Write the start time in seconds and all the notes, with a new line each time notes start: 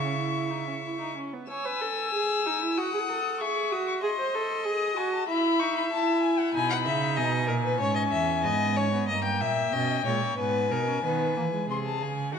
Already playing: C#3 E5 C#6
0.01 C#4
0.18 E4
0.50 D#4
0.67 C#4
0.83 E4
1.00 D#4
1.17 C#4
1.33 B3
1.49 C#5 G#5 E6
1.65 B4
1.81 A4
2.14 G#4
2.46 D#4
2.62 E4
2.78 F#4 F#5 D#6
2.94 G#4
3.10 A4
3.40 G#4 E5 C#6
3.72 F#4 D#6
3.88 C#6
4.02 G#4 D#5 C6
4.19 C5
4.34 A4
4.65 G#4 D#6
4.96 F#4 G#5
5.13 A5
5.28 E4 E5 B5
5.60 D#4 C#6
5.76 B5
5.91 E4 A5
6.23 G#5
6.39 F#5
6.54 B2 D#4 G#5 B5
6.70 F#5
6.86 C#3 E5
7.17 B2 D#5 G#5
7.25 A#5
7.31 G#5
7.48 A#2 A#4
7.64 B4
7.80 G#2 C#4 C#5
7.95 D#5
8.11 E2 E5
8.44 G#2 B3 D#5
8.76 C#4 C#5
8.93 B3
9.08 G2 A#3 D#5 A#5
9.24 G5
9.41 A#2 E5 G5
9.73 B2 C#4 D#5
10.06 A#2 G#3 C#5
10.22 A#3
10.38 G#2 B3 B4 G#5
10.71 B2 D#4 A#4
10.88 C#4
11.04 D#3 B3 B4
11.36 E3 A#3
11.53 G#3
11.69 C3 G#4 C6
11.86 A5
12.02 C#3 G#5
12.34 D#3 F#4 F#5